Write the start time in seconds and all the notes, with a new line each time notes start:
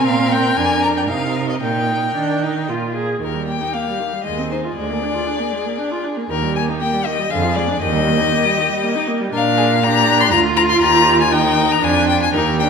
Already playing: C4 A#4
0.06 A#2 F5
0.32 G5
0.57 F2 D4 G#5
0.83 A#5
0.97 G5
1.08 C3 D#4 F5
1.49 D#5
1.62 A#2 D#4 A#4 G5
2.16 D#3 D4
2.43 D#4
2.69 A#2 F4
2.96 G#4
3.21 D#2 D#3 G4 A#4
3.35 G3
3.47 A#3 G5
3.61 D#4
3.73 A#3 F5
3.88 G3
4.00 D#3
4.13 G3
4.24 D#2 G#3 G#4 D#5
4.38 C4
4.51 D#4 C5
4.65 F4
4.76 D2 G#3 D5
4.90 A#3
5.02 D4
5.14 F4
5.27 D4
5.39 A#3
5.52 G#3
5.65 A#3
5.78 D4
5.91 F4
6.04 D4
6.17 A#3
6.30 D#2 D#3 G4 A#4
6.43 G3
6.55 A#3 G#5
6.69 D#4
6.80 A#3 G5
6.93 G3
7.05 D#3 D#5
7.19 G3
7.30 F2 D3 G#4 F5
7.44 F3
7.55 G#3 D5
7.69 D4
7.81 D#2 D#3 G4 D#5
7.94 G3
8.08 A#3
8.20 D#4
8.33 A#3
8.45 G3
8.58 D#3
8.70 G3
8.83 A#3
8.95 D#4
9.08 A#3
9.20 G3
9.32 A#2 D4 A#4 F5
9.57 G#4
9.82 D4 G4 A#5
10.21 C6
10.31 D2 F4 A#5
10.57 A#5
10.70 C6
10.82 D#2 G4 A#5
11.21 G#5
11.31 D#4 A#4 G5
11.72 A#5
11.82 F2 D4 F4 G#5
12.09 G5
12.22 G#5
12.33 D#2 D#4 G4 A#4
12.59 D4 G5